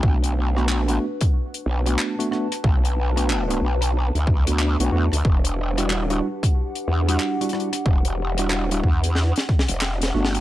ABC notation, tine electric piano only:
X:1
M:4/4
L:1/16
Q:"Swing 16ths" 1/4=92
K:Bm
V:1 name="Tine electric piano"
[A,B,DF]3 [A,B,DF]2 [A,B,DF] z4 z [A,B,DF]2 [A,B,DF] [A,B,DF] z | z3 [A,B,DF]2 [A,B,DF] z4 z [A,B,DF]2 [A,B,DF] [A,B,DF] z | z3 [G,DEF]2 [G,DEF] z4 z [G,DEF]2 [G,DEF] [G,DEF] z | z3 [G,DEF]2 [G,DEF] z8 [A,B,DF]2 |]